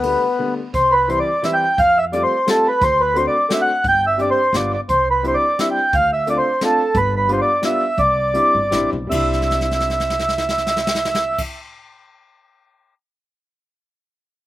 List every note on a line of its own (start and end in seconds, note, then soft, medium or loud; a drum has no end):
0.00 0.14 D2 medium
0.00 0.22 D3 medium
0.00 0.23 G3 medium
0.00 0.54 B3 medium
0.00 ride soft
0.04 0.23 A3 medium
0.04 0.23 B3 medium
0.39 0.58 D3 medium
0.39 0.58 G3 medium
0.39 0.58 A3 medium
0.39 0.59 B3 medium
0.74 1.19 C2 medium
0.74 0.94 C5 medium
0.74 kick medium
0.74 closed hi-hat medium
0.92 1.09 B4 medium
1.08 1.27 E3 medium
1.08 1.28 G3 medium
1.08 1.28 C4 medium
1.08 1.28 E4 medium
1.08 1.19 C5 medium
1.08 closed hi-hat soft
1.20 1.45 D5 loud
1.42 1.62 E3 medium
1.42 1.62 G3 medium
1.42 1.63 C4 medium
1.42 1.63 E4 medium
1.42 1.54 E5 medium
1.42 snare medium
1.42 closed hi-hat medium
1.54 1.80 G5 loud
1.78 2.23 F2 medium
1.78 1.98 F5 loud
1.78 kick medium
1.78 closed hi-hat medium
1.98 2.05 E5 loud
2.12 2.31 G3 medium
2.12 2.32 A3 medium
2.12 2.32 C4 medium
2.12 2.32 F4 medium
2.12 2.23 D5 loud
2.12 closed hi-hat medium
2.24 2.49 C5 medium
2.46 2.65 G3 medium
2.46 2.66 A3 medium
2.46 2.66 C4 medium
2.46 2.66 F4 medium
2.46 2.67 A4 medium
2.46 snare medium
2.46 closed hi-hat medium
2.68 2.83 B4 medium
2.81 3.26 D2 medium
2.81 3.02 C5 loud
2.81 kick loud
2.81 closed hi-hat medium
3.01 3.17 B4 loud
3.14 3.33 A3 medium
3.14 3.34 C4 medium
3.14 3.34 D4 medium
3.14 3.34 F#4 medium
3.14 3.26 C5 loud
3.14 closed hi-hat medium
3.27 3.52 D5 medium
3.49 3.68 A3 medium
3.49 3.68 C4 medium
3.49 3.68 D4 medium
3.49 3.69 F#4 medium
3.49 snare medium
3.49 closed hi-hat medium
3.53 3.61 E5 medium
3.62 3.86 F#5 medium
3.84 4.29 G1 medium
3.84 kick medium
3.84 closed hi-hat soft
3.89 4.05 G5 loud
4.07 4.21 E5 medium
4.18 4.37 G3 medium
4.18 4.37 C4 medium
4.18 4.38 D4 medium
4.18 4.38 G4 medium
4.18 4.30 D5 medium
4.18 closed hi-hat soft
4.31 4.56 C5 medium
4.52 4.76 G1 medium
4.52 4.72 G3 medium
4.52 4.73 B3 medium
4.52 4.73 D4 medium
4.52 4.73 F4 medium
4.52 4.72 D5 medium
4.52 snare medium
4.52 closed hi-hat medium
4.73 4.81 D5 medium
4.89 5.34 C2 medium
4.89 5.09 C5 medium
4.89 kick medium
4.89 closed hi-hat medium
5.11 5.26 B4 medium
5.23 5.42 G3 medium
5.23 5.42 C4 medium
5.23 5.43 D4 medium
5.23 5.43 E4 medium
5.23 closed hi-hat soft
5.28 5.35 C5 medium
5.34 5.60 D5 loud
5.59 5.77 G3 medium
5.59 5.77 C4 medium
5.59 5.78 D4 medium
5.59 5.78 E4 medium
5.59 5.69 E5 medium
5.59 snare medium
5.59 closed hi-hat medium
5.71 5.95 G5 medium
5.93 6.37 D2 medium
5.93 6.11 F5 loud
5.93 kick medium
5.93 closed hi-hat medium
6.13 6.28 E5 medium
6.27 6.45 A3 medium
6.27 6.45 C4 medium
6.27 6.46 D4 medium
6.27 6.46 F4 medium
6.27 6.38 D5 medium
6.27 closed hi-hat medium
6.38 6.62 C5 medium
6.61 6.79 A3 medium
6.61 6.79 C4 medium
6.61 6.80 D4 medium
6.61 6.80 F4 medium
6.61 6.97 A4 medium
6.61 snare medium
6.61 closed hi-hat medium
6.95 7.39 G1 loud
6.95 7.15 B4 loud
6.95 kick medium
6.95 closed hi-hat medium
7.16 7.31 B4 medium
7.28 7.47 G3 medium
7.28 7.47 B3 medium
7.28 7.48 D4 medium
7.28 7.48 F4 medium
7.28 closed hi-hat soft
7.33 7.40 C5 medium
7.41 7.63 D5 medium
7.62 7.81 G3 medium
7.62 7.82 B3 medium
7.62 7.82 D4 medium
7.62 7.83 F4 medium
7.62 8.01 E5 medium
7.62 snare medium
7.62 closed hi-hat medium
7.98 8.35 C2 medium
7.98 8.90 D5 loud
7.98 kick medium
7.98 closed hi-hat soft
8.34 8.54 G3 medium
8.34 8.55 C4 medium
8.34 8.55 D4 medium
8.34 8.55 E4 medium
8.34 closed hi-hat medium
8.55 8.71 G1 medium
8.71 8.91 A1 medium
8.71 8.93 G3 medium
8.71 8.93 C4 medium
8.71 8.94 D4 medium
8.71 8.94 E4 medium
8.71 snare medium
8.71 closed hi-hat medium
8.93 9.10 B1 medium
9.07 11.40 G3 medium
9.07 11.41 C4 medium
9.07 11.41 E5 medium
9.11 11.42 C2 medium
9.11 11.42 D4 medium
9.11 11.43 E4 medium
9.11 kick medium
9.11 crash medium
9.33 snare soft
9.42 snare soft
9.51 snare soft
9.61 snare soft
9.71 snare soft
9.80 snare soft
9.90 snare soft
10.00 snare soft
10.10 snare medium
10.19 snare soft
10.29 snare medium
10.38 snare medium
10.49 snare medium
10.58 snare medium
10.67 snare medium
10.77 snare medium
10.87 snare medium
10.95 snare medium
11.05 snare medium
11.15 snare medium
11.38 kick medium
11.38 crash medium